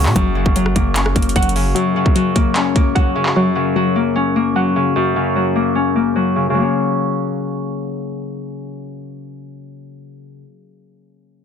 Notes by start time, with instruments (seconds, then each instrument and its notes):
Already playing: harp F#2 C#3 A#3 C#4, synth pluck F#3 F#5, analog synth pad A#3 F#4 C#5
0.06 808-style bass A#2, clap
0.15 808-style bass F#1, harp F#2, synth pluck F#3, kick, closed hi-hat
0.35 harp C#3
0.46 808-style bass F#1, kick
0.56 synth pluck F#3, harp F#3, closed hi-hat
0.66 cross-stick
0.76 808-style bass F#1, harp A#3, kick, closed hi-hat
0.95 harp C#4, clap, closed hi-hat
1.06 cross-stick
1.16 808-style bass F#1, harp A#3, kick, closed hi-hat
1.22 closed hi-hat
1.29 closed hi-hat
1.36 808-style bass F#1, harp F#3, synth pluck F#5, kick, closed hi-hat
1.43 closed hi-hat
1.49 closed hi-hat
1.56 harp C#3, open hi-hat
1.75 harp F#2, synth pluck F#3, closed hi-hat
1.96 harp C#3
2.06 kick
2.15 synth pluck F#3, harp F#3, closed hi-hat
2.36 harp A#3, kick, closed hi-hat
2.56 harp C#4, clap, closed hi-hat
2.76 harp A#3, kick, closed hi-hat
2.95 harp F#3, synth pluck F#5, kick, closed hi-hat
3.15 harp C#3
3.26 clap
3.36 harp F#2, synth pluck F#3
3.55 harp C#3
3.76 synth pluck F#3, harp F#3
3.96 harp A#3
4.16 harp C#4
4.36 harp A#3
4.56 harp F#3, synth pluck F#5
4.76 harp C#3
4.96 harp F#2
5.16 harp C#3
5.36 harp F#3
5.56 harp A#3
5.75 harp C#4
5.96 harp A#3
6.16 harp F#3
6.36 harp C#3
6.50 harp C#3 F#3
6.58 harp A#3
6.62 harp C#4